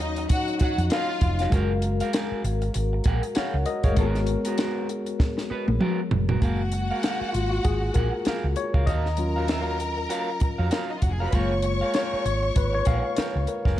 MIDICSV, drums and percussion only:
0, 0, Header, 1, 2, 480
1, 0, Start_track
1, 0, Key_signature, 6, "major"
1, 0, Tempo, 612870
1, 1192, Time_signature, 4, 2, 24, 8
1, 10806, End_track
2, 0, Start_track
2, 0, Title_t, "Drums"
2, 128, Note_on_c, 9, 42, 43
2, 207, Note_off_c, 9, 42, 0
2, 231, Note_on_c, 9, 42, 98
2, 236, Note_on_c, 9, 36, 100
2, 309, Note_off_c, 9, 42, 0
2, 315, Note_off_c, 9, 36, 0
2, 375, Note_on_c, 9, 42, 37
2, 453, Note_off_c, 9, 42, 0
2, 466, Note_on_c, 9, 42, 69
2, 477, Note_on_c, 9, 36, 90
2, 544, Note_off_c, 9, 42, 0
2, 556, Note_off_c, 9, 36, 0
2, 614, Note_on_c, 9, 42, 53
2, 692, Note_off_c, 9, 42, 0
2, 706, Note_on_c, 9, 42, 85
2, 719, Note_on_c, 9, 38, 118
2, 784, Note_off_c, 9, 42, 0
2, 797, Note_off_c, 9, 38, 0
2, 948, Note_on_c, 9, 42, 72
2, 953, Note_on_c, 9, 36, 93
2, 1027, Note_off_c, 9, 42, 0
2, 1032, Note_off_c, 9, 36, 0
2, 1087, Note_on_c, 9, 42, 53
2, 1099, Note_on_c, 9, 38, 36
2, 1166, Note_off_c, 9, 42, 0
2, 1178, Note_off_c, 9, 38, 0
2, 1191, Note_on_c, 9, 42, 81
2, 1193, Note_on_c, 9, 36, 103
2, 1270, Note_off_c, 9, 42, 0
2, 1271, Note_off_c, 9, 36, 0
2, 1425, Note_on_c, 9, 42, 78
2, 1504, Note_off_c, 9, 42, 0
2, 1569, Note_on_c, 9, 42, 65
2, 1647, Note_off_c, 9, 42, 0
2, 1670, Note_on_c, 9, 42, 87
2, 1679, Note_on_c, 9, 38, 112
2, 1748, Note_off_c, 9, 42, 0
2, 1758, Note_off_c, 9, 38, 0
2, 1916, Note_on_c, 9, 42, 69
2, 1994, Note_off_c, 9, 42, 0
2, 2050, Note_on_c, 9, 42, 42
2, 2128, Note_off_c, 9, 42, 0
2, 2148, Note_on_c, 9, 42, 96
2, 2226, Note_off_c, 9, 42, 0
2, 2381, Note_on_c, 9, 42, 70
2, 2394, Note_on_c, 9, 36, 97
2, 2459, Note_off_c, 9, 42, 0
2, 2473, Note_off_c, 9, 36, 0
2, 2530, Note_on_c, 9, 42, 61
2, 2609, Note_off_c, 9, 42, 0
2, 2624, Note_on_c, 9, 42, 85
2, 2637, Note_on_c, 9, 38, 126
2, 2702, Note_off_c, 9, 42, 0
2, 2715, Note_off_c, 9, 38, 0
2, 2864, Note_on_c, 9, 42, 77
2, 2942, Note_off_c, 9, 42, 0
2, 3003, Note_on_c, 9, 42, 51
2, 3007, Note_on_c, 9, 36, 91
2, 3082, Note_off_c, 9, 42, 0
2, 3085, Note_off_c, 9, 36, 0
2, 3106, Note_on_c, 9, 42, 78
2, 3109, Note_on_c, 9, 36, 98
2, 3184, Note_off_c, 9, 42, 0
2, 3188, Note_off_c, 9, 36, 0
2, 3249, Note_on_c, 9, 38, 36
2, 3253, Note_on_c, 9, 42, 33
2, 3328, Note_off_c, 9, 38, 0
2, 3331, Note_off_c, 9, 42, 0
2, 3340, Note_on_c, 9, 42, 75
2, 3419, Note_off_c, 9, 42, 0
2, 3483, Note_on_c, 9, 42, 65
2, 3562, Note_off_c, 9, 42, 0
2, 3585, Note_on_c, 9, 42, 88
2, 3594, Note_on_c, 9, 38, 109
2, 3663, Note_off_c, 9, 42, 0
2, 3672, Note_off_c, 9, 38, 0
2, 3831, Note_on_c, 9, 42, 71
2, 3910, Note_off_c, 9, 42, 0
2, 3966, Note_on_c, 9, 42, 44
2, 4044, Note_off_c, 9, 42, 0
2, 4070, Note_on_c, 9, 38, 64
2, 4072, Note_on_c, 9, 36, 99
2, 4149, Note_off_c, 9, 38, 0
2, 4150, Note_off_c, 9, 36, 0
2, 4211, Note_on_c, 9, 38, 61
2, 4290, Note_off_c, 9, 38, 0
2, 4447, Note_on_c, 9, 48, 71
2, 4526, Note_off_c, 9, 48, 0
2, 4548, Note_on_c, 9, 47, 88
2, 4626, Note_off_c, 9, 47, 0
2, 4787, Note_on_c, 9, 43, 99
2, 4865, Note_off_c, 9, 43, 0
2, 4926, Note_on_c, 9, 43, 97
2, 5004, Note_off_c, 9, 43, 0
2, 5026, Note_on_c, 9, 42, 73
2, 5027, Note_on_c, 9, 36, 93
2, 5105, Note_off_c, 9, 42, 0
2, 5106, Note_off_c, 9, 36, 0
2, 5260, Note_on_c, 9, 42, 65
2, 5338, Note_off_c, 9, 42, 0
2, 5506, Note_on_c, 9, 42, 77
2, 5515, Note_on_c, 9, 38, 108
2, 5584, Note_off_c, 9, 42, 0
2, 5593, Note_off_c, 9, 38, 0
2, 5751, Note_on_c, 9, 42, 64
2, 5830, Note_off_c, 9, 42, 0
2, 5988, Note_on_c, 9, 42, 87
2, 5992, Note_on_c, 9, 36, 86
2, 6066, Note_off_c, 9, 42, 0
2, 6070, Note_off_c, 9, 36, 0
2, 6220, Note_on_c, 9, 42, 63
2, 6232, Note_on_c, 9, 36, 83
2, 6298, Note_off_c, 9, 42, 0
2, 6310, Note_off_c, 9, 36, 0
2, 6462, Note_on_c, 9, 42, 77
2, 6475, Note_on_c, 9, 38, 114
2, 6540, Note_off_c, 9, 42, 0
2, 6554, Note_off_c, 9, 38, 0
2, 6703, Note_on_c, 9, 42, 60
2, 6781, Note_off_c, 9, 42, 0
2, 6847, Note_on_c, 9, 36, 86
2, 6925, Note_off_c, 9, 36, 0
2, 6947, Note_on_c, 9, 42, 72
2, 6949, Note_on_c, 9, 36, 93
2, 7026, Note_off_c, 9, 42, 0
2, 7027, Note_off_c, 9, 36, 0
2, 7094, Note_on_c, 9, 38, 32
2, 7172, Note_off_c, 9, 38, 0
2, 7180, Note_on_c, 9, 42, 70
2, 7258, Note_off_c, 9, 42, 0
2, 7426, Note_on_c, 9, 42, 81
2, 7435, Note_on_c, 9, 38, 111
2, 7504, Note_off_c, 9, 42, 0
2, 7514, Note_off_c, 9, 38, 0
2, 7674, Note_on_c, 9, 42, 68
2, 7752, Note_off_c, 9, 42, 0
2, 7911, Note_on_c, 9, 42, 84
2, 7989, Note_off_c, 9, 42, 0
2, 8146, Note_on_c, 9, 42, 60
2, 8157, Note_on_c, 9, 36, 94
2, 8225, Note_off_c, 9, 42, 0
2, 8235, Note_off_c, 9, 36, 0
2, 8388, Note_on_c, 9, 42, 73
2, 8401, Note_on_c, 9, 38, 113
2, 8466, Note_off_c, 9, 42, 0
2, 8480, Note_off_c, 9, 38, 0
2, 8630, Note_on_c, 9, 42, 68
2, 8633, Note_on_c, 9, 36, 81
2, 8708, Note_off_c, 9, 42, 0
2, 8712, Note_off_c, 9, 36, 0
2, 8870, Note_on_c, 9, 42, 76
2, 8873, Note_on_c, 9, 36, 87
2, 8948, Note_off_c, 9, 42, 0
2, 8951, Note_off_c, 9, 36, 0
2, 9104, Note_on_c, 9, 42, 71
2, 9183, Note_off_c, 9, 42, 0
2, 9349, Note_on_c, 9, 42, 81
2, 9358, Note_on_c, 9, 38, 110
2, 9427, Note_off_c, 9, 42, 0
2, 9436, Note_off_c, 9, 38, 0
2, 9599, Note_on_c, 9, 42, 61
2, 9677, Note_off_c, 9, 42, 0
2, 9835, Note_on_c, 9, 42, 86
2, 9839, Note_on_c, 9, 36, 94
2, 9913, Note_off_c, 9, 42, 0
2, 9917, Note_off_c, 9, 36, 0
2, 10066, Note_on_c, 9, 42, 65
2, 10079, Note_on_c, 9, 36, 90
2, 10144, Note_off_c, 9, 42, 0
2, 10157, Note_off_c, 9, 36, 0
2, 10311, Note_on_c, 9, 42, 82
2, 10324, Note_on_c, 9, 38, 111
2, 10389, Note_off_c, 9, 42, 0
2, 10403, Note_off_c, 9, 38, 0
2, 10552, Note_on_c, 9, 42, 61
2, 10630, Note_off_c, 9, 42, 0
2, 10694, Note_on_c, 9, 36, 84
2, 10703, Note_on_c, 9, 38, 35
2, 10772, Note_off_c, 9, 36, 0
2, 10782, Note_off_c, 9, 38, 0
2, 10806, End_track
0, 0, End_of_file